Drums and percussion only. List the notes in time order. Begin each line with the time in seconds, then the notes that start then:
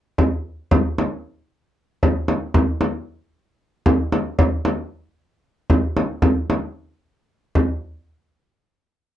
0.18 frame drum
0.71 frame drum
0.98 frame drum
2.03 frame drum
2.28 frame drum
2.54 frame drum
2.81 frame drum
3.86 frame drum
4.12 frame drum
4.39 frame drum
4.65 frame drum
5.70 frame drum
5.97 frame drum
6.22 frame drum
6.50 frame drum
7.55 frame drum